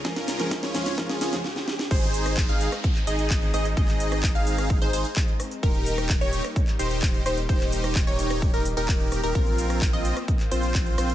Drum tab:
CC |----------------|x---------------|----------------|----------------|
HH |xxoxxxoxx-ox----|xxoxxxoxxxoxxxox|xxoxxxoxxxoxxxox|xxoxxxoxxxoxxxox|
SH |x-xxx-xxx-xx----|xxxxxxxxxxxxxxxx|xxxxxxxxxxxxxxxx|xxxxxxxxxxxxxxxx|
CP |----------------|----x----x--x---|-x--x-------x---|----x----x--x---|
SD |oooooooooooooooo|---r---r------r-|---r---r------r-|---r---r------r-|
BD |o---o---o-------|o---o---o---o---|o---o---o---o---|o---o---o---o---|

CC |----------------|----------------|
HH |xxoxxxoxxxoxxxox|xxoxxxoxxxoxxxox|
SH |xxxxxxxxxxxxxxxx|xxxxxxxxxxxxxxxx|
CP |-x--x-------x---|----x----x--x---|
SD |---r---r------r-|---r---r------r-|
BD |o---o---o---o---|o---o---o---o---|